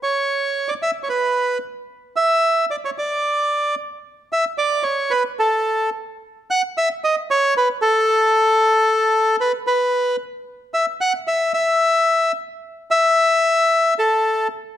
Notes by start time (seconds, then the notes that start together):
0.03 C#5
0.68 D5
0.82 E5
1.03 C#5
1.09 B4
2.16 E5
2.71 D5
2.85 C#5
2.98 D5
4.33 E5
4.58 D5
4.83 C#5
5.10 B4
5.39 A4
6.51 F#5
6.78 E5
7.04 D#5
7.30 C#5
7.57 B4
7.82 A4
9.40 B4
9.67 B4
10.74 E5
11.01 F#5
11.27 E5
11.54 E5
12.91 E5
13.99 A4